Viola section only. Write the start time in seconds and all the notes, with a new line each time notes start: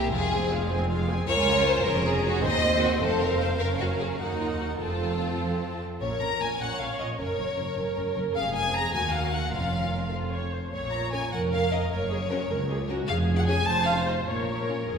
Already playing: A#3 E4
0.12 G#3 F4
0.32 C4 G#4
0.52 G#3 F4
0.70 C4 G#4
0.90 G#3 F4
1.09 C4 G#4
1.28 F4 A#4
1.87 C#4 G#4
2.43 C4 C5
3.02 C5
3.60 C#4 A#4
4.20 D#4 A#4
4.81 C4 A4
6.02 A#4
6.61 C#5
7.20 A#4
7.78 A#4
8.36 G#4
8.94 F#4
9.54 F4
10.12 F4
10.32 C#5
10.53 C5
10.72 C#5
11.32 A#4
11.91 A#4
12.11 G#4
12.30 F#4
12.50 A#4
12.69 G#4
12.89 F#4
13.08 G#4
13.68 C5
14.27 C#5
14.88 G#4